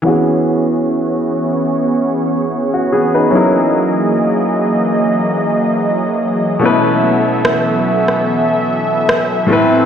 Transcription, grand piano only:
0, 0, Header, 1, 2, 480
1, 0, Start_track
1, 0, Key_signature, 4, "major"
1, 0, Tempo, 821918
1, 24, Time_signature, 4, 2, 24, 8
1, 5755, End_track
2, 0, Start_track
2, 0, Title_t, "Grand piano"
2, 0, Program_c, 0, 0
2, 12, Note_on_c, 0, 52, 69
2, 20, Note_on_c, 0, 59, 63
2, 29, Note_on_c, 0, 61, 61
2, 38, Note_on_c, 0, 66, 63
2, 47, Note_on_c, 0, 68, 71
2, 120, Control_c, 0, 64, 127
2, 1438, Note_off_c, 0, 59, 0
2, 1443, Note_off_c, 0, 61, 0
2, 1447, Note_off_c, 0, 66, 0
2, 1452, Note_off_c, 0, 68, 0
2, 1598, Note_on_c, 0, 66, 60
2, 1700, Note_off_c, 0, 66, 0
2, 1708, Note_on_c, 0, 68, 67
2, 1712, Note_on_c, 0, 59, 58
2, 1829, Note_off_c, 0, 68, 0
2, 1831, Note_off_c, 0, 59, 0
2, 1837, Note_on_c, 0, 71, 62
2, 1840, Note_on_c, 0, 63, 52
2, 1914, Note_off_c, 0, 52, 0
2, 1929, Note_on_c, 0, 54, 67
2, 1934, Note_off_c, 0, 63, 0
2, 1935, Note_on_c, 0, 61, 60
2, 1943, Note_on_c, 0, 63, 59
2, 1950, Control_c, 0, 64, 0
2, 1951, Note_on_c, 0, 64, 63
2, 1957, Note_on_c, 0, 68, 61
2, 1965, Note_on_c, 0, 70, 73
2, 2055, Control_c, 0, 64, 127
2, 2063, Note_off_c, 0, 71, 0
2, 3833, Note_off_c, 0, 54, 0
2, 3836, Note_off_c, 0, 61, 0
2, 3840, Note_off_c, 0, 63, 0
2, 3844, Note_off_c, 0, 64, 0
2, 3847, Note_off_c, 0, 68, 0
2, 3850, Note_on_c, 0, 47, 67
2, 3851, Note_off_c, 0, 70, 0
2, 3860, Note_on_c, 0, 57, 58
2, 3868, Note_on_c, 0, 61, 61
2, 3872, Control_c, 0, 64, 0
2, 3877, Note_on_c, 0, 64, 63
2, 3887, Note_on_c, 0, 71, 77
2, 3962, Control_c, 0, 64, 127
2, 5514, Note_off_c, 0, 47, 0
2, 5518, Note_off_c, 0, 57, 0
2, 5523, Note_off_c, 0, 61, 0
2, 5527, Note_off_c, 0, 64, 0
2, 5527, Note_on_c, 0, 45, 71
2, 5532, Note_off_c, 0, 71, 0
2, 5537, Note_on_c, 0, 57, 66
2, 5547, Note_on_c, 0, 60, 66
2, 5552, Control_c, 0, 64, 0
2, 5555, Note_on_c, 0, 64, 63
2, 5564, Note_on_c, 0, 71, 79
2, 5655, Control_c, 0, 64, 127
2, 5755, Note_off_c, 0, 45, 0
2, 5755, Note_off_c, 0, 57, 0
2, 5755, Note_off_c, 0, 60, 0
2, 5755, Note_off_c, 0, 64, 0
2, 5755, Note_off_c, 0, 71, 0
2, 5755, End_track
0, 0, End_of_file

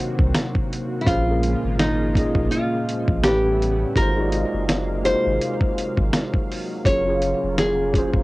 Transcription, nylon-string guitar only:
0, 0, Header, 1, 2, 480
1, 0, Start_track
1, 0, Tempo, 722892
1, 709, Time_signature, 4, 2, 24, 8
1, 5466, End_track
2, 0, Start_track
2, 0, Title_t, "Nylon-string guitar"
2, 0, Program_c, 0, 24
2, 0, Note_on_c, 0, 72, 103
2, 442, Note_off_c, 0, 72, 0
2, 671, Note_on_c, 0, 64, 69
2, 709, Note_on_c, 0, 65, 93
2, 710, Note_off_c, 0, 64, 0
2, 1188, Note_off_c, 0, 65, 0
2, 1191, Note_on_c, 0, 63, 84
2, 1663, Note_off_c, 0, 63, 0
2, 1666, Note_on_c, 0, 65, 96
2, 2148, Note_on_c, 0, 67, 87
2, 2162, Note_off_c, 0, 65, 0
2, 2602, Note_off_c, 0, 67, 0
2, 2633, Note_on_c, 0, 70, 104
2, 3325, Note_off_c, 0, 70, 0
2, 3353, Note_on_c, 0, 72, 107
2, 4285, Note_off_c, 0, 72, 0
2, 4552, Note_on_c, 0, 73, 97
2, 5004, Note_off_c, 0, 73, 0
2, 5038, Note_on_c, 0, 68, 85
2, 5466, Note_off_c, 0, 68, 0
2, 5466, End_track
0, 0, End_of_file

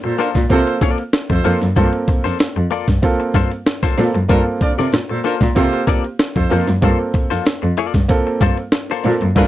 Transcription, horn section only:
0, 0, Header, 1, 2, 480
1, 0, Start_track
1, 0, Key_signature, -2, "minor"
1, 0, Tempo, 632911
1, 1337, Time_signature, 4, 2, 24, 8
1, 7186, End_track
2, 0, Start_track
2, 0, Title_t, "Horn section"
2, 0, Program_c, 0, 61
2, 35, Note_on_c, 0, 69, 83
2, 36, Note_on_c, 0, 65, 82
2, 36, Note_on_c, 0, 72, 86
2, 122, Note_off_c, 0, 65, 0
2, 122, Note_off_c, 0, 69, 0
2, 122, Note_off_c, 0, 72, 0
2, 143, Note_on_c, 0, 62, 84
2, 143, Note_on_c, 0, 70, 89
2, 145, Note_on_c, 0, 65, 81
2, 218, Note_off_c, 0, 62, 0
2, 218, Note_off_c, 0, 70, 0
2, 220, Note_off_c, 0, 65, 0
2, 387, Note_on_c, 0, 65, 112
2, 388, Note_on_c, 0, 69, 110
2, 389, Note_on_c, 0, 72, 127
2, 575, Note_off_c, 0, 65, 0
2, 576, Note_off_c, 0, 69, 0
2, 577, Note_off_c, 0, 72, 0
2, 991, Note_on_c, 0, 65, 81
2, 991, Note_on_c, 0, 72, 98
2, 992, Note_on_c, 0, 69, 85
2, 1180, Note_off_c, 0, 72, 0
2, 1181, Note_off_c, 0, 65, 0
2, 1181, Note_off_c, 0, 69, 0
2, 3259, Note_on_c, 0, 65, 99
2, 3260, Note_on_c, 0, 62, 99
2, 3260, Note_on_c, 0, 70, 112
2, 3335, Note_off_c, 0, 62, 0
2, 3335, Note_off_c, 0, 65, 0
2, 3335, Note_off_c, 0, 70, 0
2, 3498, Note_on_c, 0, 74, 86
2, 3499, Note_on_c, 0, 70, 78
2, 3500, Note_on_c, 0, 62, 77
2, 3574, Note_off_c, 0, 70, 0
2, 3574, Note_off_c, 0, 74, 0
2, 3575, Note_off_c, 0, 62, 0
2, 3864, Note_on_c, 0, 65, 78
2, 3864, Note_on_c, 0, 69, 85
2, 3865, Note_on_c, 0, 72, 86
2, 3954, Note_off_c, 0, 65, 0
2, 3954, Note_off_c, 0, 69, 0
2, 3955, Note_off_c, 0, 72, 0
2, 3981, Note_on_c, 0, 62, 74
2, 3982, Note_on_c, 0, 70, 86
2, 3983, Note_on_c, 0, 65, 82
2, 4056, Note_off_c, 0, 62, 0
2, 4057, Note_off_c, 0, 65, 0
2, 4057, Note_off_c, 0, 70, 0
2, 4217, Note_on_c, 0, 65, 109
2, 4218, Note_on_c, 0, 69, 113
2, 4218, Note_on_c, 0, 72, 118
2, 4409, Note_off_c, 0, 65, 0
2, 4409, Note_off_c, 0, 69, 0
2, 4409, Note_off_c, 0, 72, 0
2, 4820, Note_on_c, 0, 65, 84
2, 4821, Note_on_c, 0, 72, 88
2, 4825, Note_on_c, 0, 69, 79
2, 5014, Note_off_c, 0, 65, 0
2, 5014, Note_off_c, 0, 72, 0
2, 5017, Note_off_c, 0, 69, 0
2, 7099, Note_on_c, 0, 62, 107
2, 7101, Note_on_c, 0, 65, 103
2, 7102, Note_on_c, 0, 70, 117
2, 7176, Note_off_c, 0, 62, 0
2, 7178, Note_off_c, 0, 65, 0
2, 7178, Note_off_c, 0, 70, 0
2, 7186, End_track
0, 0, End_of_file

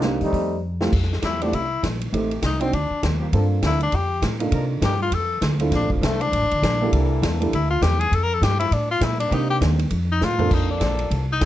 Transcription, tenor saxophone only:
0, 0, Header, 1, 2, 480
1, 0, Start_track
1, 0, Key_signature, -1, "major"
1, 0, Tempo, 299551
1, 1487, Time_signature, 4, 2, 24, 8
1, 18351, End_track
2, 0, Start_track
2, 0, Title_t, "Tenor saxophone"
2, 0, Program_c, 0, 66
2, 2003, Note_on_c, 0, 64, 83
2, 2278, Note_on_c, 0, 62, 82
2, 2302, Note_off_c, 0, 64, 0
2, 2474, Note_on_c, 0, 64, 80
2, 2498, Note_off_c, 0, 62, 0
2, 2942, Note_off_c, 0, 64, 0
2, 3939, Note_on_c, 0, 63, 79
2, 4180, Note_on_c, 0, 60, 84
2, 4204, Note_off_c, 0, 63, 0
2, 4392, Note_on_c, 0, 62, 73
2, 4416, Note_off_c, 0, 60, 0
2, 4862, Note_off_c, 0, 62, 0
2, 5876, Note_on_c, 0, 64, 96
2, 6114, Note_off_c, 0, 64, 0
2, 6135, Note_on_c, 0, 62, 91
2, 6337, Note_on_c, 0, 67, 81
2, 6361, Note_off_c, 0, 62, 0
2, 6795, Note_off_c, 0, 67, 0
2, 7764, Note_on_c, 0, 67, 85
2, 8018, Note_off_c, 0, 67, 0
2, 8044, Note_on_c, 0, 65, 93
2, 8237, Note_on_c, 0, 69, 84
2, 8261, Note_off_c, 0, 65, 0
2, 8705, Note_off_c, 0, 69, 0
2, 9218, Note_on_c, 0, 62, 77
2, 9465, Note_off_c, 0, 62, 0
2, 9495, Note_on_c, 0, 53, 49
2, 9681, Note_on_c, 0, 57, 89
2, 9705, Note_off_c, 0, 53, 0
2, 9957, Note_on_c, 0, 62, 103
2, 9981, Note_off_c, 0, 57, 0
2, 11101, Note_off_c, 0, 62, 0
2, 12094, Note_on_c, 0, 64, 76
2, 12333, Note_off_c, 0, 64, 0
2, 12342, Note_on_c, 0, 65, 88
2, 12541, Note_on_c, 0, 67, 91
2, 12565, Note_off_c, 0, 65, 0
2, 12811, Note_on_c, 0, 68, 102
2, 12835, Note_off_c, 0, 67, 0
2, 13050, Note_on_c, 0, 69, 84
2, 13074, Note_off_c, 0, 68, 0
2, 13191, Note_on_c, 0, 70, 109
2, 13215, Note_off_c, 0, 69, 0
2, 13364, Note_on_c, 0, 69, 86
2, 13388, Note_off_c, 0, 70, 0
2, 13513, Note_on_c, 0, 67, 89
2, 13537, Note_off_c, 0, 69, 0
2, 13760, Note_off_c, 0, 67, 0
2, 13770, Note_on_c, 0, 64, 96
2, 13987, Note_on_c, 0, 62, 83
2, 14012, Note_off_c, 0, 64, 0
2, 14266, Note_off_c, 0, 62, 0
2, 14277, Note_on_c, 0, 65, 105
2, 14494, Note_on_c, 0, 64, 94
2, 14518, Note_off_c, 0, 65, 0
2, 14728, Note_off_c, 0, 64, 0
2, 14738, Note_on_c, 0, 62, 91
2, 14962, Note_on_c, 0, 63, 82
2, 14986, Note_off_c, 0, 62, 0
2, 15216, Note_off_c, 0, 63, 0
2, 15225, Note_on_c, 0, 67, 101
2, 15338, Note_off_c, 0, 67, 0
2, 16211, Note_on_c, 0, 63, 92
2, 16417, Note_on_c, 0, 65, 102
2, 16441, Note_off_c, 0, 63, 0
2, 16898, Note_on_c, 0, 63, 80
2, 16922, Note_off_c, 0, 65, 0
2, 17145, Note_off_c, 0, 63, 0
2, 17154, Note_on_c, 0, 62, 80
2, 17768, Note_off_c, 0, 62, 0
2, 18143, Note_on_c, 0, 63, 96
2, 18351, Note_off_c, 0, 63, 0
2, 18351, End_track
0, 0, End_of_file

